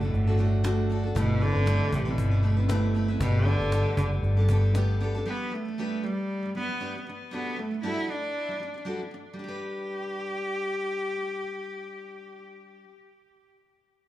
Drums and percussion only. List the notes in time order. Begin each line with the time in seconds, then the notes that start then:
0.02 cajon slap
0.14 cajon slap
0.39 cajon slap
0.64 cajon slap
0.91 cajon slap
1.16 cajon bass
1.42 cajon slap
1.67 cajon slap
1.93 cajon bass
2.07 cajon slap
2.18 cajon bass
2.44 cajon slap
2.69 cajon slap
2.96 cajon slap
3.21 cajon bass
3.47 cajon slap
3.61 cajon slap
3.72 cajon slap
3.97 cajon bass
4.12 cajon slap
4.24 cajon slap
4.49 cajon bass
4.64 cajon slap
4.75 cajon slap
5.01 cajon slap
5.14 cajon slap